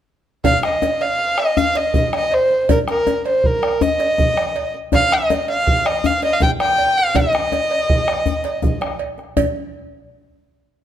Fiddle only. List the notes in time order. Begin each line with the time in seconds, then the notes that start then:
0.45 F5
0.65 D#5
1.02 F5
1.39 D#5
1.57 F5
1.77 D#5
2.15 D#5
2.34 C5
2.71 A#4
2.89 A#4
3.27 C5
3.46 A#4
3.82 D#5
4.95 F5
5.14 D#5
5.50 F5
5.87 D#5
6.06 F5
6.24 D#5
6.33 F5
6.43 G5
6.61 G5
6.98 F5
7.16 D#5